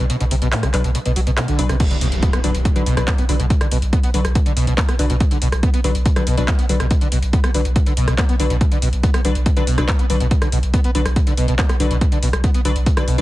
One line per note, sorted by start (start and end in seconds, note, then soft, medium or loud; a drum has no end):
0.10 0.16 B2 loud
0.10 closed hi-hat medium
0.20 0.31 B1 medium
0.20 0.24 B2 medium
0.20 closed hi-hat soft
0.31 0.41 B1 loud
0.31 0.35 C3 medium
0.31 open hi-hat loud
0.42 0.52 B1 medium
0.42 0.48 B2 medium
0.42 closed hi-hat medium
0.52 0.65 A2 medium
0.52 clap loud
0.52 open hi-hat medium
0.63 0.73 B1 medium
0.63 0.69 D3 loud
0.63 cross-stick medium
0.63 closed hi-hat medium
0.74 0.82 B1 loud
0.74 0.84 B1 loud
0.74 0.82 F#3 medium
0.74 0.82 D4 medium
0.74 0.82 B4 medium
0.74 clap medium
0.74 open hi-hat loud
0.84 0.95 B1 medium
0.84 0.90 B2 medium
0.84 closed hi-hat medium
0.95 0.98 B2 medium
0.95 closed hi-hat medium
1.06 1.16 B1 medium
1.06 1.11 B2 loud
1.06 closed hi-hat medium
1.16 1.26 B1 loud
1.16 1.20 F#3 medium
1.16 open hi-hat loud
1.27 1.37 B1 medium
1.27 1.30 B2 loud
1.27 closed hi-hat medium
1.37 1.46 B2 medium
1.37 cross-stick loud
1.37 clap loud
1.37 closed hi-hat medium
1.48 1.58 B1 medium
1.48 1.60 D3 medium
1.48 closed hi-hat medium
1.59 1.69 B1 medium
1.59 1.65 A2 loud
1.59 1.72 F#3 medium
1.59 1.72 D4 medium
1.59 1.72 B4 medium
1.59 open hi-hat loud
1.69 1.80 B1 medium
1.69 1.75 C3 loud
1.69 cross-stick medium
1.69 closed hi-hat medium
1.80 1.84 B2 loud
1.80 kick loud
1.80 closed hi-hat medium
1.80 crash loud
1.80 impact medium
1.91 2.01 B1 medium
1.91 1.97 D3 loud
1.91 closed hi-hat medium
2.01 2.11 B1 loud
2.01 2.07 B2 medium
2.01 open hi-hat loud
2.12 2.22 B1 medium
2.12 closed hi-hat medium
2.23 2.28 B3 medium
2.23 kick loud
2.23 closed hi-hat medium
2.33 2.43 B1 medium
2.33 2.39 B3 medium
2.33 cross-stick loud
2.33 closed hi-hat medium
2.44 2.54 B1 loud
2.44 2.50 D3 medium
2.44 2.52 F#3 medium
2.44 2.52 D4 medium
2.44 2.52 B4 loud
2.44 open hi-hat medium
2.55 2.65 B1 medium
2.55 closed hi-hat medium
2.65 2.69 B2 medium
2.65 kick loud
2.65 closed hi-hat medium
2.76 2.86 B1 medium
2.76 2.82 D3 loud
2.76 2.84 F#3 medium
2.76 2.84 D4 medium
2.76 2.84 B4 loud
2.76 closed hi-hat medium
2.86 2.96 B1 loud
2.86 2.95 B2 loud
2.86 open hi-hat loud
2.97 3.07 B1 medium
2.97 3.03 B2 loud
2.97 3.05 F#3 medium
2.97 3.05 D4 medium
2.97 3.05 B4 loud
2.97 cross-stick medium
2.97 closed hi-hat medium
3.08 3.14 B3 medium
3.08 kick loud
3.08 clap loud
3.08 closed hi-hat medium
3.18 3.28 B1 medium
3.18 3.24 B3 medium
3.18 closed hi-hat medium
3.29 3.39 B1 loud
3.29 3.35 D3 medium
3.29 3.37 F#3 medium
3.29 3.37 D4 medium
3.29 3.37 B4 medium
3.29 open hi-hat medium
3.40 3.50 B1 medium
3.40 3.45 B2 medium
3.40 closed hi-hat medium
3.50 3.54 B2 loud
3.50 kick loud
3.50 closed hi-hat medium
3.61 3.71 B1 medium
3.61 3.67 D3 loud
3.61 cross-stick medium
3.61 closed hi-hat medium
3.71 3.82 B1 loud
3.71 3.77 B2 medium
3.71 open hi-hat loud
3.82 3.93 B1 medium
3.82 closed hi-hat medium
3.93 3.99 B3 medium
3.93 kick loud
3.93 closed hi-hat medium
4.03 4.13 B1 medium
4.03 4.09 B3 medium
4.03 closed hi-hat medium
4.14 4.24 B1 loud
4.14 4.20 D3 medium
4.14 4.22 F#3 medium
4.14 4.22 D4 medium
4.14 4.22 B4 medium
4.14 open hi-hat medium
4.25 4.35 B1 medium
4.25 cross-stick medium
4.25 closed hi-hat medium
4.35 4.39 B2 medium
4.35 kick loud
4.35 closed hi-hat medium
4.46 4.56 B1 medium
4.46 4.52 D3 loud
4.46 closed hi-hat medium
4.57 4.67 B1 loud
4.57 4.65 B2 loud
4.57 open hi-hat loud
4.67 4.78 B1 medium
4.67 4.73 B2 loud
4.67 closed hi-hat medium
4.78 4.84 B3 medium
4.78 kick loud
4.78 clap loud
4.78 closed hi-hat medium
4.88 4.99 B1 medium
4.88 4.94 B3 medium
4.88 cross-stick medium
4.88 closed hi-hat medium
4.99 5.09 B1 medium
4.99 5.05 D3 medium
4.99 5.13 F#3 medium
4.99 5.13 D4 medium
4.99 5.13 B4 medium
4.99 open hi-hat loud
5.10 5.20 B1 medium
5.10 5.16 B2 medium
5.10 closed hi-hat medium
5.20 5.24 B2 loud
5.20 kick loud
5.20 closed hi-hat medium
5.31 5.41 B1 medium
5.31 5.37 D3 loud
5.31 closed hi-hat medium
5.42 5.52 B1 loud
5.42 5.48 B2 medium
5.42 open hi-hat loud
5.52 5.63 B1 medium
5.52 cross-stick medium
5.52 closed hi-hat medium
5.63 5.69 B3 medium
5.63 kick loud
5.63 closed hi-hat medium
5.74 5.84 B1 medium
5.74 5.80 B3 medium
5.74 closed hi-hat medium
5.84 5.94 B1 loud
5.84 5.90 D3 medium
5.84 5.93 F#3 medium
5.84 5.93 D4 medium
5.84 5.93 B4 loud
5.84 open hi-hat medium
5.95 6.05 B1 medium
5.95 closed hi-hat medium
6.06 6.09 B2 medium
6.06 kick loud
6.06 closed hi-hat medium
6.16 6.26 B1 medium
6.16 6.22 D3 loud
6.16 6.25 F#3 medium
6.16 6.25 D4 medium
6.16 6.25 B4 loud
6.16 cross-stick medium
6.16 closed hi-hat medium
6.27 6.37 B1 loud
6.27 6.36 B2 loud
6.27 open hi-hat loud
6.37 6.48 B1 medium
6.37 6.43 B2 loud
6.37 6.46 F#3 medium
6.37 6.46 D4 medium
6.37 6.46 B4 loud
6.37 closed hi-hat medium
6.48 6.54 B3 medium
6.48 kick loud
6.48 clap loud
6.48 closed hi-hat medium
6.59 6.69 B1 medium
6.59 6.65 B3 medium
6.59 closed hi-hat medium
6.69 6.79 B1 loud
6.69 6.75 D3 medium
6.69 6.78 F#3 medium
6.69 6.78 D4 medium
6.69 6.78 B4 medium
6.69 open hi-hat loud
6.80 6.91 B1 medium
6.80 6.86 B2 medium
6.80 cross-stick medium
6.80 closed hi-hat medium
6.91 6.94 B2 loud
6.91 kick loud
6.91 closed hi-hat medium
7.01 7.11 B1 medium
7.01 7.07 D3 loud
7.01 closed hi-hat soft
7.12 7.22 B1 loud
7.12 7.18 B2 medium
7.12 open hi-hat loud
7.22 7.33 B1 medium
7.22 closed hi-hat medium
7.33 7.39 B3 medium
7.33 kick loud
7.33 closed hi-hat medium
7.44 7.54 B1 medium
7.44 7.50 B3 medium
7.44 cross-stick loud
7.44 closed hi-hat medium
7.54 7.65 B1 loud
7.54 7.60 D3 medium
7.54 7.63 F#3 medium
7.54 7.63 D4 medium
7.54 7.63 B4 medium
7.54 open hi-hat medium
7.65 7.76 B1 medium
7.65 closed hi-hat medium
7.76 7.79 B2 medium
7.76 kick loud
7.76 closed hi-hat medium
7.86 7.96 B1 medium
7.86 7.92 D3 loud
7.86 closed hi-hat medium
7.97 8.07 B1 loud
7.97 8.06 B2 loud
7.97 open hi-hat loud
8.08 8.18 B1 medium
8.08 8.14 B2 loud
8.08 cross-stick medium
8.08 closed hi-hat medium
8.18 8.24 B3 medium
8.18 kick loud
8.18 clap loud
8.18 closed hi-hat medium
8.29 8.39 B1 medium
8.29 8.35 B3 medium
8.29 closed hi-hat medium
8.40 8.50 B1 loud
8.40 8.46 D3 medium
8.40 8.53 F#3 medium
8.40 8.53 D4 medium
8.40 8.53 B4 medium
8.40 open hi-hat loud
8.50 8.61 B1 medium
8.50 8.56 B2 medium
8.50 closed hi-hat soft
8.61 8.64 B2 loud
8.61 kick loud
8.61 closed hi-hat medium
8.72 8.82 B1 medium
8.72 8.77 D3 loud
8.72 closed hi-hat soft
8.82 8.92 B1 medium
8.82 8.88 B2 medium
8.82 open hi-hat loud
8.93 9.03 B1 medium
8.93 closed hi-hat soft
9.03 9.09 B3 medium
9.03 kick loud
9.03 closed hi-hat medium
9.14 9.24 B1 medium
9.14 9.20 B3 medium
9.14 cross-stick loud
9.14 closed hi-hat medium
9.25 9.35 B1 loud
9.25 9.31 D3 medium
9.25 9.33 F#3 loud
9.25 9.33 D4 medium
9.25 9.33 B4 loud
9.25 open hi-hat medium
9.35 9.46 B1 medium
9.35 closed hi-hat medium
9.46 9.50 B2 medium
9.46 kick loud
9.46 closed hi-hat medium
9.57 9.67 B1 medium
9.57 9.63 D3 loud
9.57 9.65 F#3 medium
9.57 9.65 D4 medium
9.57 9.65 B4 loud
9.57 closed hi-hat medium
9.67 9.77 B1 loud
9.67 9.76 B2 loud
9.67 open hi-hat loud
9.78 9.88 B1 medium
9.78 9.84 B2 loud
9.78 9.86 F#3 medium
9.78 9.86 D4 medium
9.78 9.86 B4 loud
9.78 cross-stick medium
9.78 closed hi-hat medium
9.88 9.94 B3 medium
9.88 kick loud
9.88 clap loud
9.88 closed hi-hat medium
9.99 10.09 B1 medium
9.99 10.05 B3 medium
9.99 closed hi-hat medium
10.10 10.20 B1 loud
10.10 10.16 D3 medium
10.10 10.18 F#3 medium
10.10 10.18 D4 medium
10.10 10.18 B4 medium
10.10 open hi-hat medium
10.20 10.31 B1 medium
10.20 10.26 B2 medium
10.20 closed hi-hat medium
10.31 10.35 B2 loud
10.31 kick loud
10.31 closed hi-hat medium
10.42 10.52 B1 medium
10.42 10.48 D3 loud
10.42 cross-stick medium
10.42 closed hi-hat medium
10.52 10.62 B1 loud
10.52 10.58 B2 medium
10.52 open hi-hat loud
10.63 10.73 B1 medium
10.63 closed hi-hat soft
10.74 10.80 B3 medium
10.74 kick loud
10.74 closed hi-hat medium
10.84 10.94 B1 medium
10.84 10.90 B3 medium
10.84 closed hi-hat medium
10.95 11.05 B1 loud
10.95 11.01 D3 medium
10.95 11.03 F#3 medium
10.95 11.03 D4 medium
10.95 11.03 B4 medium
10.95 open hi-hat medium
11.06 11.16 B1 medium
11.06 cross-stick medium
11.06 closed hi-hat medium
11.16 11.20 B2 medium
11.16 kick loud
11.16 closed hi-hat medium
11.27 11.37 B1 medium
11.27 11.33 D3 loud
11.27 closed hi-hat medium
11.37 11.47 B1 loud
11.37 11.46 B2 loud
11.37 open hi-hat loud
11.48 11.59 B1 medium
11.48 11.54 B2 loud
11.48 closed hi-hat soft
11.59 11.65 B3 medium
11.59 kick loud
11.59 clap loud
11.59 closed hi-hat medium
11.69 11.79 B1 medium
11.69 11.75 B3 medium
11.69 cross-stick loud
11.69 closed hi-hat soft
11.80 11.90 B1 loud
11.80 11.86 D3 medium
11.80 11.93 F#3 medium
11.80 11.93 D4 medium
11.80 11.93 B4 medium
11.80 open hi-hat medium
11.91 12.01 B1 medium
11.91 11.97 B2 medium
11.91 closed hi-hat soft
12.01 12.05 B2 loud
12.01 kick loud
12.01 closed hi-hat medium
12.12 12.22 B1 medium
12.12 12.18 D3 loud
12.12 closed hi-hat soft
12.23 12.33 B1 loud
12.23 12.28 B2 medium
12.23 open hi-hat loud
12.33 12.44 B1 medium
12.33 cross-stick loud
12.33 closed hi-hat soft
12.44 12.50 B3 medium
12.44 kick loud
12.44 closed hi-hat medium
12.54 12.64 B1 medium
12.54 12.60 B3 medium
12.54 closed hi-hat medium
12.65 12.75 B1 loud
12.65 12.71 D3 medium
12.65 12.74 F#3 medium
12.65 12.74 D4 medium
12.65 12.74 B4 loud
12.65 open hi-hat medium
12.76 12.86 B1 medium
12.76 closed hi-hat medium
12.86 12.90 B2 medium
12.86 kick loud
12.86 closed hi-hat medium
12.97 13.07 B1 medium
12.97 13.03 D3 loud
12.97 13.05 F#3 medium
12.97 13.05 D4 medium
12.97 13.05 B4 loud
12.97 cross-stick loud
12.97 closed hi-hat medium
13.08 13.18 B1 loud
13.08 13.16 B2 loud
13.08 open hi-hat loud
13.18 13.21 B1 medium
13.18 13.21 B2 loud
13.18 13.21 F#3 loud
13.18 13.21 D4 medium
13.18 13.21 B4 loud
13.18 closed hi-hat soft